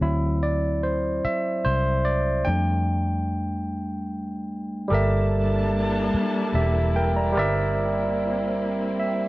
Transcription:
0.01 1.20 D2 medium
0.01 2.42 F#3 medium
0.01 2.42 C4 soft
0.01 0.44 E4 medium
0.43 0.80 D5 medium
0.83 1.21 C5 medium
1.24 1.66 E5 medium
1.24 muted fingered electric bass stroke soft
1.65 2.43 C2 medium
1.65 2.06 C5 medium
2.05 2.47 D5 medium
2.45 4.87 F2 medium
2.45 3.00 G3 medium
2.45 3.00 A3 soft
2.45 3.00 D4 medium
2.45 4.05 G5 medium
4.88 6.10 G1 medium
4.88 7.30 G3 medium
4.88 7.34 A#3 medium
4.88 9.28 E4 medium
4.88 6.10 G4 medium
4.88 6.11 A4 medium
4.88 7.34 A5 medium
4.92 7.34 G3 medium
4.92 7.34 D4 medium
4.92 6.12 A#4 medium
4.92 6.13 E5 medium
6.14 muted fingered electric bass stroke soft
6.54 7.37 E1 medium
6.54 6.94 G4 medium
6.54 6.93 E5 medium
6.96 7.15 A#4 medium
6.96 7.15 G5 medium
7.16 7.36 D5 soft
7.16 7.55 A#5 medium
7.32 9.28 G3 medium
7.32 9.28 A#3 medium
7.32 9.28 C4 medium
7.32 9.28 G4 medium
7.32 9.28 A#4 medium
7.37 9.28 G1 loud
7.37 9.28 D5 medium
7.37 8.98 E5 medium
9.00 9.28 E5 medium

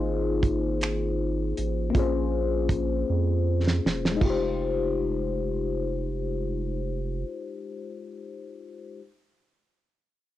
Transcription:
0.00 1.54 G#1 medium
0.00 1.89 A#3 medium
0.00 1.90 D#4 medium
0.00 1.91 F4 medium
0.00 1.92 G#4 medium
0.00 1.93 C5 medium
0.43 kick medium
0.43 closed hi-hat soft
0.81 finger snap medium
0.81 closed hi-hat medium
1.58 1.92 A1 medium
1.58 closed hi-hat soft
1.90 4.15 A#3 medium
1.90 2.00 C4 soft
1.95 3.05 A#1 medium
1.95 4.19 C#4 medium
1.95 4.17 F4 medium
1.95 4.18 G#4 medium
1.95 kick medium
1.95 closed hi-hat soft
2.00 4.20 C5 medium
2.69 kick medium
2.69 closed hi-hat soft
3.10 3.80 F2 medium
3.67 snare medium
3.85 4.18 E1 medium
3.85 snare medium
4.05 snare medium
4.12 7.89 G#3 medium
4.16 7.91 D#4 medium
4.21 7.24 F1 medium
4.21 7.93 F4 medium
4.21 kick medium
4.21 splash medium
4.25 7.96 G4 medium
4.30 7.98 C5 medium

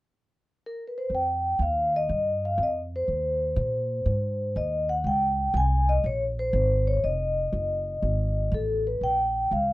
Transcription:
0.66 0.76 A#4 medium
0.88 0.95 B4 soft
0.98 1.04 C5 medium
1.10 1.58 F2 medium
1.15 1.59 G5 medium
1.59 2.07 D#2 medium
1.59 1.92 F5 medium
1.96 2.45 D#5 medium
2.09 2.57 G2 medium
2.45 2.61 F5 medium
2.58 3.06 F2 medium
2.63 2.77 D#5 medium
2.96 4.63 C5 medium
3.08 3.56 D#2 medium
3.56 4.05 A#2 medium
4.06 4.54 G#2 medium
4.56 5.03 D#2 medium
4.56 4.87 D#5 medium
4.89 4.97 F#5 medium
5.04 5.53 C#2 medium
5.04 5.52 G5 medium
5.54 6.03 C2 medium
5.54 5.90 G#5 medium
5.89 6.04 D#5 medium
6.04 6.52 A#1 medium
6.04 6.21 C#5 medium
6.39 6.85 C5 medium
6.53 7.02 G#1 medium
6.87 7.03 C#5 medium
7.04 7.52 F1 medium
7.04 8.57 D#5 medium
7.53 8.01 F#1 medium
8.02 8.50 G#1 medium
8.52 9.00 A1 medium
8.52 8.84 A4 medium
8.87 9.03 B4 medium
9.01 9.49 A#1 medium
9.01 9.49 G5 medium
9.51 9.73 C#2 medium
9.51 9.73 F5 medium

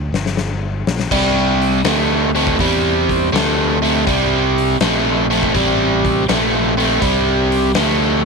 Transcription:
0.12 0.83 G1 medium
0.12 snare medium
0.26 snare medium
0.37 snare medium
0.87 1.09 A#1 loud
0.87 snare loud
1.00 snare medium
1.11 1.83 C2 medium
1.11 1.81 C3 medium
1.11 1.81 G3 medium
1.11 kick loud
1.11 crash loud
1.62 open hi-hat medium
1.84 2.56 D2 medium
1.84 2.30 C3 medium
1.84 2.30 A3 medium
1.84 snare loud
1.84 open hi-hat medium
2.35 2.56 C3 medium
2.35 2.57 A3 medium
2.35 open hi-hat medium
2.47 kick medium
2.59 3.31 E2 medium
2.59 3.29 C3 medium
2.59 3.29 G3 medium
2.59 kick loud
2.59 open hi-hat medium
3.09 kick medium
3.09 open hi-hat medium
3.33 4.05 D2 medium
3.33 3.78 C3 medium
3.33 3.78 A3 medium
3.33 snare loud
3.33 open hi-hat medium
3.82 4.04 C3 medium
3.82 4.04 A3 medium
3.82 open hi-hat medium
4.07 4.79 C2 medium
4.07 4.76 C3 medium
4.07 4.76 G3 medium
4.07 kick loud
4.07 open hi-hat medium
4.58 open hi-hat medium
4.80 5.52 A#1 medium
4.80 5.26 C3 medium
4.80 5.26 A3 loud
4.80 snare loud
4.80 open hi-hat medium
5.30 5.52 C3 medium
5.30 5.52 A3 medium
5.30 open hi-hat medium
5.43 kick medium
5.54 6.26 A1 medium
5.54 6.23 C3 medium
5.54 6.24 G3 medium
5.54 kick loud
5.54 open hi-hat medium
6.05 kick medium
6.05 open hi-hat soft
6.29 7.01 A#1 medium
6.29 6.74 C3 medium
6.29 6.74 A3 medium
6.29 snare loud
6.29 open hi-hat medium
6.78 6.99 C3 medium
6.78 7.00 A3 medium
6.78 open hi-hat medium
7.01 7.74 C2 medium
7.01 7.71 C3 medium
7.01 7.71 G3 medium
7.01 kick loud
7.01 open hi-hat medium
7.52 open hi-hat medium
7.75 8.25 D2 medium
7.75 8.21 C3 medium
7.75 8.22 A3 loud
7.75 snare loud
7.75 open hi-hat medium

